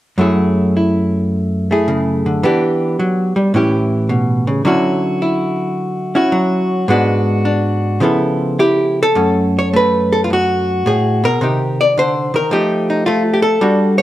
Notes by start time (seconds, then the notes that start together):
0.18 F#2 F#3 A3 E4 G#4
0.77 E4
1.71 A3 E4 G#4
1.88 C#3
2.26 D3
2.43 E3 B3 D4 G4
2.99 F#3
3.36 G3
3.54 A2 E3 C#4 E4 G4
4.09 B2
4.47 C#3
4.65 D3 F#3 C#4 E4 F#4
5.22 E4
6.15 C#4 E4 F#4
6.32 F#3
6.88 G#2 G#3 B3 D4 F#4
7.45 D4
8.00 C#3 F3 B3 E4 A4
8.59 E4 G4
9.03 A4
9.15 F#2 A3 C#4
9.59 C#5
9.73 A3 B4
10.12 A4
10.24 F4
10.30 F#2 F#4
10.86 A2 G#4
11.24 B2 A#4
11.41 C3 D#3 D#4 G4
11.81 D5
11.97 D3 C5
12.34 D#3 A#4
12.51 F3 A3 D#4 G4
12.90 D#4
13.06 A3 F4
13.34 G4
13.42 A4
13.61 G3 D4 F#4
13.98 C#5